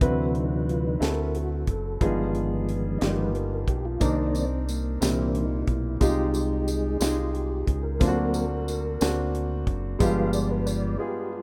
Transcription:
0.01 fingered electric bass D2, tonewheel organ C3 E3 F#3 C4 B4, upright piano D3 C4 E4 F#4 B4, kick, closed hi-hat
0.35 tonewheel organ D#4, closed hi-hat
0.69 tonewheel organ F4, closed hi-hat
0.87 tonewheel organ D#4
1.00 fingered electric bass D2, upright piano C4 E4 F#4 A4, snare, closed hi-hat
1.04 tonewheel organ A#4
1.34 tonewheel organ F#4, closed hi-hat
1.67 fingered electric bass F#1, tonewheel organ A4, kick, closed hi-hat
2.01 fingered electric bass G1, upright piano G2 B3 D#4 F4 G#4, tonewheel organ D#3 F3 G#3 B3, kick, closed hi-hat
2.34 closed hi-hat
2.68 closed hi-hat
2.98 fingered electric bass G1, tonewheel organ D#3 F3 G#3 D#5, upright piano A#3 D#4 F4 G4, snare, closed hi-hat
3.03 tonewheel organ B3 D5
3.07 upright piano B3
3.22 tonewheel organ B4
3.35 tonewheel organ A#4, closed hi-hat
3.54 tonewheel organ A#4
3.67 fingered electric bass B1, tonewheel organ G4, kick, closed hi-hat
3.85 tonewheel organ F4
4.00 fingered electric bass C2, upright piano C3 C4 D4 D#4 A#4, tonewheel organ D#3 A#3 D#4 D5, kick, closed hi-hat, tambourine
4.27 tonewheel organ D#4
4.34 tonewheel organ C4, closed hi-hat, tambourine
4.69 tonewheel organ A#3, closed hi-hat, tambourine
5.01 fingered electric bass C2, upright piano A#2 A#3 C4 E4 G4, tonewheel organ E3 A#3 C4 D4, snare, closed hi-hat, tambourine
5.35 tonewheel organ D#4, closed hi-hat
5.62 tonewheel organ D#4
5.67 fingered electric bass B1, tonewheel organ E4, kick, closed hi-hat
5.97 fingered electric bass C2, upright piano C3 G#3 D#4 F4, tonewheel organ E4, closed hi-hat
6.01 tonewheel organ G#3 D#4 F4 G4, upright piano G4, kick, tambourine
6.34 tonewheel organ G4, closed hi-hat, tambourine
6.62 tonewheel organ G4
6.68 tonewheel organ G#4, closed hi-hat, tambourine
7.00 fingered electric bass C2, upright piano G#3 D#4 F4 G4, tonewheel organ D#4, snare, closed hi-hat, tambourine
7.08 upright piano G#4
7.19 tonewheel organ F4
7.33 tonewheel organ G4, closed hi-hat
7.50 tonewheel organ G4
7.67 fingered electric bass C#2, tonewheel organ G#4, kick, closed hi-hat
7.83 tonewheel organ A#4
7.99 fingered electric bass D2, upright piano D3 A#3 C4 D4 F4, tonewheel organ F#3 A#3 C4 C5, kick, closed hi-hat, tambourine
8.08 upright piano F#4
8.17 tonewheel organ A#4
8.34 closed hi-hat, tambourine
8.68 closed hi-hat, tambourine
9.01 fingered electric bass D2, upright piano A#3 C4 D4 F#4, snare, closed hi-hat, tambourine
9.35 closed hi-hat
9.67 fingered electric bass F#1, kick, closed hi-hat
9.99 fingered electric bass G1, upright piano G2 G#3 B3 F4 G4, tonewheel organ F3 G#3 B3 F5, kick, closed hi-hat, tambourine
10.33 tonewheel organ D5, closed hi-hat, tambourine
10.51 tonewheel organ B4
10.66 tonewheel organ D5, closed hi-hat, tambourine
10.98 upright piano G#3 B3 F4 G#4, tonewheel organ G4
11.33 tonewheel organ F4

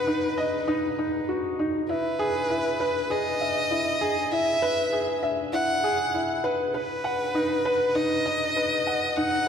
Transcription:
Already playing: felt piano D#4 B4 D#5 F#5, violin B4
0.07 felt piano D#4
0.38 felt piano D#5
0.68 felt piano D#4
0.99 felt piano D#4
1.29 felt piano F#4
1.59 felt piano D#4
1.89 felt piano E4, violin B4
2.19 felt piano G#4
2.50 felt piano E4
2.80 felt piano B4
3.10 felt piano G#4, violin D#5
3.41 felt piano E5
3.71 felt piano E4
4.01 felt piano G#4
4.31 felt piano E4, violin E5
4.62 felt piano B4
4.93 felt piano G#4
5.23 felt piano E5
5.53 felt piano E4, violin F#5
5.84 felt piano G#4
6.14 felt piano E4
6.44 felt piano B4
6.74 felt piano B4, violin B4
7.04 felt piano F#5
7.35 felt piano D#4
7.65 felt piano B4
7.95 felt piano D#4, violin D#5
8.26 felt piano D#5
8.56 felt piano B4
8.87 felt piano F#5
9.16 felt piano D#4, violin F#5

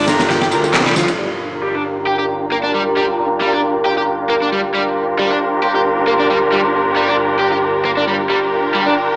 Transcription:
Already playing: analog synth bass G1, analog synth pad G3 F4 A4
0.07 string section D4 F4 G4 A#4, snare, ride, tambourine
0.19 snare, ride, tambourine, high conga
0.30 overdriven electric guitar G4, snare, ride, tambourine, high bongo
0.41 overdriven electric guitar G4, snare, ride
0.51 analog synth bass D2, string section D4 F4 G4 A#4, ride, tambourine
0.64 tambourine, high bongo
0.74 analog synth bass C2, overdriven electric guitar C4, snare, clap, ride, tambourine
0.80 snare, ride
0.86 overdriven electric guitar G3, snare, ride
0.91 snare, ride
0.96 analog synth bass D2, overdriven electric guitar F3, snare, ride, tambourine
1.08 analog synth bass D1, ride, tambourine, high bongo
1.18 analog synth bass G1, overdriven electric guitar G3, string section D4 F4 G4 A#4, analog synth pad G4 F5 A#5
1.63 overdriven electric guitar G3
1.75 overdriven electric guitar D4
2.07 overdriven electric guitar G4
2.19 overdriven electric guitar G4
2.52 overdriven electric guitar A#3
2.63 overdriven electric guitar D4
2.74 overdriven electric guitar G3
2.97 overdriven electric guitar G3
3.41 overdriven electric guitar G3
3.53 overdriven electric guitar D4
3.85 overdriven electric guitar G4
3.98 overdriven electric guitar G4
4.30 overdriven electric guitar A#3
4.42 overdriven electric guitar D4
4.52 overdriven electric guitar G3
4.74 overdriven electric guitar G3, string section D4 F4 G4 A#4, analog synth pad C6
5.19 overdriven electric guitar G3
5.31 overdriven electric guitar D4
5.63 overdriven electric guitar G4
5.75 overdriven electric guitar G4
6.08 overdriven electric guitar A#3
6.20 overdriven electric guitar D4
6.30 overdriven electric guitar G3
6.52 overdriven electric guitar G3
6.96 overdriven electric guitar G3
7.08 overdriven electric guitar D4
7.41 overdriven electric guitar G4
7.53 overdriven electric guitar G4
7.85 overdriven electric guitar A#3
7.97 overdriven electric guitar D4
8.07 overdriven electric guitar G3
8.30 analog synth bass G1, overdriven electric guitar G3, string section D4 F4 G4 A#4, analog synth pad G5 A#5
8.74 overdriven electric guitar G3
8.86 overdriven electric guitar D4

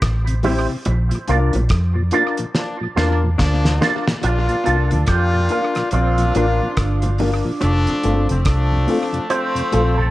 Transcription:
0.02 fingered electric bass A1, kick, cross-stick, closed hi-hat
0.27 tonewheel organ C3, closed hi-hat
0.43 tonewheel organ G3 C4 E4, grand piano C4 E4 G4, clean electric guitar E4 G4 C5, open hi-hat, low bongo
0.69 tonewheel organ C3
0.85 fingered electric bass A#1, closed hi-hat, high bongo
1.11 tonewheel organ A#2 F3, closed hi-hat
1.27 fingered electric bass C2, tonewheel organ A#3 D4 F4, grand piano D4 F4 A#4, clean electric guitar F4 A#4 D5, closed hi-hat
1.53 fingered electric bass A#1, tonewheel organ A#2 F3, closed hi-hat, high bongo
1.69 fingered electric bass F2, kick, cross-stick, closed hi-hat
1.95 tonewheel organ A#2 F3
2.11 tonewheel organ A#3 D4 F4, grand piano D4 F4 A#4, clean electric guitar F4 A#4 D5, closed hi-hat, high bongo
2.37 tonewheel organ A#2 F3, muted clean electric guitar stroke, closed hi-hat
2.54 horn section F3 A#3 D4, snare, high bongo
2.81 tonewheel organ A#2 F3
2.96 fingered electric bass E2, horn section F3 A#3 D4, tonewheel organ A#3 D4 F4, grand piano D4 F4 A#4, clean electric guitar F4 A#4 D5, snare, high bongo
3.23 tonewheel organ A#2 F3
3.38 fingered electric bass D2, horn section F3 A#3 D4, kick, snare
3.65 tonewheel organ A#2 F3, snare
3.81 tonewheel organ A#3 D4 F4, grand piano D4 F4 A#4, clean electric guitar F4 A#4 D5, snare, low bongo
4.07 tonewheel organ A#2 F3, snare
4.23 fingered electric bass A#1, horn section A#3 D4 F4, clean electric guitar F4, closed hi-hat, high bongo
4.49 tonewheel organ A#2 F3, closed hi-hat
4.65 fingered electric bass C2, tonewheel organ A#3 D4 F4, grand piano D4 F4 A#4, clean electric guitar A4, closed hi-hat
4.91 fingered electric bass D2, tonewheel organ A#2 F3, horn section F3 A#3 D4, closed hi-hat
5.07 fingered electric bass F2, horn section A#3 D4 F4, clean electric guitar G4, kick, cross-stick, closed hi-hat
5.34 tonewheel organ A#2 F3
5.49 tonewheel organ A#3 D4 F4, grand piano D4 F4 A#4, clean electric guitar F4, closed hi-hat, high bongo
5.75 tonewheel organ A#2 F3, cross-stick, closed hi-hat
5.91 fingered electric bass A#1, horn section A#3 D4 F4, clean electric guitar C4, closed hi-hat, high bongo
6.18 tonewheel organ A#2 F3, closed hi-hat
6.35 fingered electric bass A1, tonewheel organ A#3 D4 F4, grand piano D4 F4 A#4, clean electric guitar D4, closed hi-hat, high bongo
6.62 tonewheel organ A#2 F3
6.77 fingered electric bass G1, kick, cross-stick, closed hi-hat
7.02 tonewheel organ A#2 F3, closed hi-hat, high bongo
7.18 tonewheel organ A#3 D4 F4, grand piano D4 F4 A#4, open hi-hat, low bongo
7.45 tonewheel organ A#2 F3
7.61 fingered electric bass F1, horn section F3 A3 D4, closed hi-hat, high bongo
7.87 tonewheel organ F2 C3, closed hi-hat
8.03 fingered electric bass G1, tonewheel organ A3 C4 F4, grand piano C4 F4 A4, closed hi-hat
8.29 fingered electric bass F1, tonewheel organ F2 C3, horn section F3 A3 C4, closed hi-hat
8.45 fingered electric bass C2, horn section F3 A3 D4, kick, cross-stick, closed hi-hat
8.72 tonewheel organ F2 C3
8.87 tonewheel organ A3 C4 F4, grand piano C4 F4 A4, open hi-hat, high bongo
9.13 tonewheel organ F2 C3, closed hi-hat
9.30 horn section F3 A3 C4, clean electric guitar C5, closed hi-hat, high bongo
9.55 tonewheel organ F2 C3, closed hi-hat
9.72 fingered electric bass A#1, tonewheel organ A3 C4 F4, grand piano C4 F4 A4, closed hi-hat, high bongo
9.96 tonewheel organ F2 C3, clean electric guitar A4

